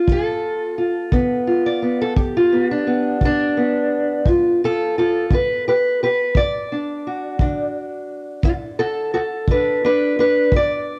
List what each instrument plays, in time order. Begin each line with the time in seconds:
Already playing: steel-string acoustic guitar B3 F4 G4
0.07 steel-string acoustic guitar G2, kick
0.12 steel-string acoustic guitar A4
0.78 steel-string acoustic guitar F4
1.12 steel-string acoustic guitar D3 B3, kick
1.47 steel-string acoustic guitar F4
1.66 steel-string acoustic guitar D5
1.82 steel-string acoustic guitar B3
2.01 steel-string acoustic guitar A4
2.16 steel-string acoustic guitar G2 G4, kick
2.37 steel-string acoustic guitar F4
2.52 steel-string acoustic guitar B3
2.71 steel-string acoustic guitar D4
2.87 steel-string acoustic guitar B3
3.21 steel-string acoustic guitar D3, kick
3.25 steel-string acoustic guitar D4
3.57 steel-string acoustic guitar B3
4.26 steel-string acoustic guitar G2 F4 A4, kick
4.64 steel-string acoustic guitar F4 A4
4.98 steel-string acoustic guitar F4 A4
5.31 steel-string acoustic guitar D3 B4, kick
5.68 steel-string acoustic guitar G4 B4
6.03 steel-string acoustic guitar G4 B4
6.35 steel-string acoustic guitar D2 D5, kick
6.72 steel-string acoustic guitar D4
7.07 steel-string acoustic guitar F#4
7.39 steel-string acoustic guitar D3 D4, kick
8.43 steel-string acoustic guitar D2 F#4 A4, kick
8.79 steel-string acoustic guitar F#4 A4
9.14 steel-string acoustic guitar F#4 A4
9.48 steel-string acoustic guitar D3 D4 B4, kick
9.85 steel-string acoustic guitar D4 B4
10.19 steel-string acoustic guitar D4 B4
10.52 steel-string acoustic guitar D2, kick
10.56 steel-string acoustic guitar D5